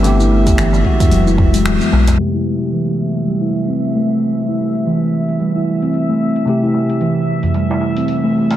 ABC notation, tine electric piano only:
X:1
M:4/4
L:1/8
Q:"Swing 16ths" 1/4=112
K:Ador
V:1 name="Tine electric piano"
[D,B,G]3 [E,^G,F]4- [E,G,F] | [C,A,G]8- | [C,A,G]8 | [C,A,G]8 |]